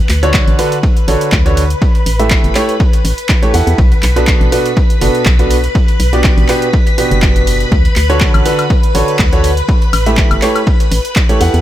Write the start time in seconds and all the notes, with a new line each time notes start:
Already playing: B4 B5
0.09 D2, clap, open hi-hat, ride
0.23 D3 D4 F#4 A4 C#5, snare, closed hi-hat
0.34 kick, snare, clap, ride
0.47 A1, closed hi-hat
0.59 D3 D4 F#4 A4 B4, open hi-hat, ride
0.72 closed hi-hat, ride
0.83 kick, ride
0.97 closed hi-hat
1.08 A1 D3 D4 F#4 A4 C#5, open hi-hat, ride
1.21 closed hi-hat
1.32 D2, kick, snare, clap, ride
1.46 D3 D4 F#4 A4 C#5, snare, closed hi-hat
1.57 open hi-hat, ride
1.70 closed hi-hat
1.82 kick, ride
1.95 closed hi-hat, ride
2.06 A1, open hi-hat, ride
2.19 A3 E4 G4 A4 E5, snare, closed hi-hat
2.30 kick, snare, clap, ride
2.44 G1, closed hi-hat
2.55 A3 E4 G4 A4 C#5, clap, open hi-hat, ride
2.69 closed hi-hat
2.80 kick, ride
2.93 closed hi-hat, ride
3.05 A1, open hi-hat, ride
3.18 closed hi-hat
3.29 kick, snare, clap, ride
3.42 A3 E4 G4 A4 C#5, closed hi-hat, ride
3.54 E2 E4 G4 A4 F#5, open hi-hat
3.67 E2, closed hi-hat
3.78 B1, kick, ride
3.92 closed hi-hat, ride
4.03 B1, clap, open hi-hat, ride
4.16 B2 D4 F#4 A4 B4, snare, closed hi-hat
4.27 kick, snare, clap, ride
4.41 A1, closed hi-hat
4.52 B2 D4 F#4 A4 B4, open hi-hat, ride
4.65 closed hi-hat, ride
4.77 kick, ride
4.90 closed hi-hat
5.01 F#1 B2 D4 F#4 A4 B4, open hi-hat, ride
5.15 closed hi-hat
5.25 B1, kick, snare, clap, ride
5.39 B2 D4 F#4 A4 B4, snare, closed hi-hat
5.50 open hi-hat, ride
5.64 closed hi-hat
5.75 kick, ride
5.88 closed hi-hat, ride
6.00 B1, open hi-hat, ride
6.13 B2 D4 F#4 G4 D5, snare, closed hi-hat
6.24 kick, snare, clap, ride
6.37 A1, closed hi-hat
6.49 B2 D4 F#4 G4 B4, clap, open hi-hat, ride
6.62 closed hi-hat
6.73 kick, ride
6.87 closed hi-hat, ride
6.98 B2 D4 F#4 G4 B4, open hi-hat, ride
7.11 F#1, closed hi-hat
7.22 kick, snare, clap, ride
7.36 closed hi-hat, ride
7.47 open hi-hat
7.60 closed hi-hat
7.72 D2, kick, ride
7.85 closed hi-hat, ride
7.96 D2, clap, open hi-hat, ride
8.10 D3 D4 F#4 A4 C#5, snare, closed hi-hat
8.21 kick, snare, clap, ride
8.34 A1, closed hi-hat, high woodblock
8.46 D3 D4 F#4 A4 B4, open hi-hat, ride
8.59 closed hi-hat, ride, high woodblock
8.70 kick, ride
8.83 closed hi-hat
8.95 A1 D3 D4 F#4 A4 C#5, open hi-hat, ride
9.08 closed hi-hat
9.19 D2, kick, snare, clap, ride
9.33 D3 D4 F#4 A4 C#5, snare, closed hi-hat
9.44 open hi-hat, ride
9.57 closed hi-hat
9.69 kick, ride
9.82 closed hi-hat, ride
9.93 A1, open hi-hat, ride, high woodblock
10.06 A3 E4 G4 A4 E5, snare, closed hi-hat
10.17 kick, snare, clap, ride
10.31 G1, closed hi-hat, high woodblock
10.42 A3 E4 G4 A4 C#5, clap, open hi-hat, ride
10.56 closed hi-hat, high woodblock
10.67 kick, ride
10.80 closed hi-hat, ride
10.91 A1, open hi-hat, ride
11.05 closed hi-hat
11.16 kick, snare, clap, ride
11.29 A3 E4 G4 A4 C#5, closed hi-hat, ride
11.41 E2 E4 G4 A4 F#5, open hi-hat
11.54 E2, closed hi-hat